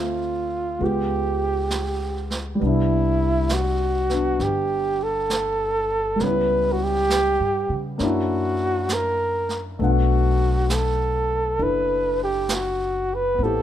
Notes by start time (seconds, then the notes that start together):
Already playing: D2 A3 C4 F4 E5
0.79 C#2 G#3 B3 F4, brush sweep
0.84 G4
1.70 snare, hi-hat pedal
2.30 snare
2.55 G3
2.60 C2 B3 D4 E4, brush sweep
2.66 E4
3.49 snare, hi-hat pedal
3.53 F#4
4.09 B3 D4, snare
4.40 G1 G4, brush sweep, snare
5.03 A4
5.30 snare, hi-hat pedal
6.16 G3 B3, brush sweep, snare
6.20 C#2 C#4 B4
6.26 E4
6.72 F#4
6.83 G4
7.10 snare, hi-hat pedal
7.40 G2
7.70 C#3
7.98 F#2 A#3 C#4 D4, brush sweep, snare
8.03 E4 F#4
8.89 snare, hi-hat pedal
8.93 A#4
9.49 snare
9.79 B1 A3 B3 D4, brush sweep
9.83 F#4 F#5
10.70 A4, snare, hi-hat pedal
11.59 F#1 D4 E4 A4, brush sweep
11.63 B4
12.24 G4
12.49 snare, hi-hat pedal
12.54 F#4
13.15 B4
13.35 B3 C4
13.39 A1 E4, brush sweep
13.43 G4 A4